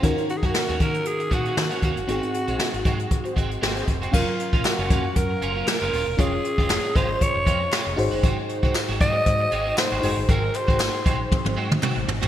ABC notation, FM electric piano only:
X:1
M:4/4
L:1/8
Q:"Swing 16ths" 1/4=117
K:Abmix
V:1 name="FM electric piano"
[DEGB]8 | [CEGA]8 | [G,DBf]8 | [DFAd]6- [DFAd] [EGAc]- |
[EGAc]6- [EGAc] [EGAc]- | [EGAc]6- [EGAc] z |]
V:2 name="FM electric piano" clef=bass
E,3 z4 z | A,,3 z4 z | z8 | z6 z A,,- |
A,,2 z4 z A,,- | A,,2 z6 |]